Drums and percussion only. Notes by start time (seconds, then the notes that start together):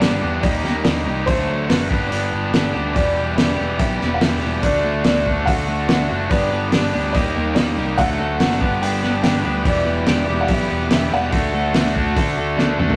0.02 snare, open hi-hat
0.43 kick, open hi-hat
0.65 snare
0.85 snare, open hi-hat
1.27 kick, open hi-hat
1.70 snare, open hi-hat
1.91 kick
2.12 open hi-hat
2.54 snare, open hi-hat
2.96 kick, open hi-hat
3.38 snare, open hi-hat
3.79 kick, open hi-hat
4.01 snare
4.21 snare, open hi-hat
4.63 kick, open hi-hat
5.04 snare, open hi-hat
5.26 kick
5.47 kick, open hi-hat
5.89 snare, open hi-hat
6.31 kick, open hi-hat
6.72 snare, open hi-hat
7.15 kick, open hi-hat
7.56 snare, open hi-hat
7.98 kick, open hi-hat
8.40 snare, open hi-hat
8.51 snare
8.61 kick
8.83 open hi-hat
9.03 snare
9.24 snare, open hi-hat
9.65 kick, open hi-hat
10.07 snare, open hi-hat
10.48 kick, open hi-hat
10.91 snare, open hi-hat
11.33 kick, open hi-hat
11.74 snare, open hi-hat
11.86 snare
11.96 kick
12.16 kick, open hi-hat
12.59 snare
12.80 mid tom
12.90 floor tom